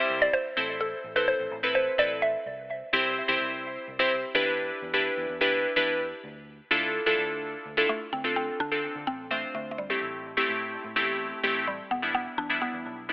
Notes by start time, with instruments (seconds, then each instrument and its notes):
Already playing: synth keys G3 C4 E4 G4 C5, synth pluck E5
0.10 fingered electric bass C2
0.22 synth pluck D5
0.33 synth pluck C5
0.57 fingered electric bass A1, synth keys C4 E4 A4 C5
0.81 synth pluck A4
1.04 fingered electric bass A1
1.16 synth keys C4 E4 A4 C5, synth pluck B4
1.28 synth pluck C5
1.40 fingered electric bass A1
1.51 fingered electric bass A1
1.63 synth keys C4 E4 A4 B4
1.75 synth pluck C5
1.98 fingered electric bass A1, synth keys C4 E4 A4 B4, synth pluck D5
2.22 synth pluck E5
2.46 fingered electric bass C2
2.93 fingered electric bass C2, synth keys C4 E4 G4 C5
3.28 fingered electric bass C2, synth keys C4 E4 G4 C5
3.40 fingered electric bass C2
3.88 fingered electric bass C2
3.99 synth keys C4 E4 G4 C5
4.35 fingered electric bass E2, synth keys D4 E4 G4 B4
4.82 fingered electric bass E2
4.94 synth keys D4 E4 G4 B4
5.17 fingered electric bass E2
5.29 fingered electric bass E2
5.41 synth keys D4 E4 G4 B4
5.76 fingered electric bass E2, synth keys D4 E4 G4 B4
6.24 fingered electric bass D2
6.71 fingered electric bass D2, synth keys D4 E4 F4 A4
7.06 fingered electric bass D2, synth keys D4 E4 F4 A4
7.18 fingered electric bass D2
7.65 fingered electric bass D2
7.77 synth keys D4 E4 F4 A4
7.89 synth pluck A3
8.13 fingered electric bass D2, synth pluck C4
8.24 synth keys C4 D4 F4 A4
8.36 synth pluck C4
8.60 fingered electric bass D3, synth pluck D4
8.71 synth keys C4 D4 F4 A4
8.95 fingered electric bass D3
9.07 fingered electric bass A1, synth pluck C4
9.31 synth pluck A3, synth keys C4 D4 F4 C5
9.54 fingered electric bass D2, synth pluck A3
9.71 synth pluck A3
9.78 synth pluck G3
9.90 synth keys A3 C4 E4 G4
10.02 fingered electric bass A1
10.37 synth keys A3 C4 E4 G4
10.49 fingered electric bass A2
10.84 fingered electric bass A2
10.96 fingered electric bass E2, synth keys A3 C4 E4 G4
11.43 fingered electric bass A1, synth keys A3 C4 E4 G4
11.67 synth pluck G3
11.91 fingered electric bass E1, synth pluck B3
12.02 synth keys G3 B3 D4 E4
12.14 synth pluck B3
12.38 fingered electric bass E2, synth pluck D4
12.49 synth keys G3 B3 D4 E4
12.62 synth pluck B3
12.73 fingered electric bass E2
12.85 fingered electric bass B1
13.09 synth keys G3 B3 D4 E4